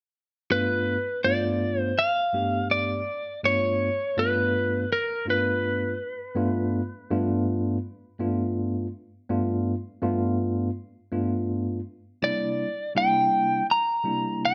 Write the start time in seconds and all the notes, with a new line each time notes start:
0.51 G2 A3 B3 D4 F4 B4
1.24 G2 A3 B3 D4 F4 D5
1.80 C5
1.99 F5
2.33 G2 A3 B3 D4 G4
2.71 D5
3.44 G2 A3 B3 D4 F4 C#5
4.17 G2 A3 B3 D4 F4 B4
4.92 A#4
5.26 G2 A3 B3 D4 F4
5.30 B4
6.35 G2 A3 B3 D4 F4
7.10 G2 A3 B3 D4 F4
8.19 G2 A3 B3 D4 F4
9.29 G2 A3 B3 D4 F4
10.02 G2 A3 B3 D4 F4
11.12 G2 A3 B3 D4 F4
12.22 C3 G3 A#3 D4 E4 D5
12.95 C3 G3 A#3 D4 E4 G5
13.71 A#5
14.04 C3 G3 A#3 D4 E4
14.45 G5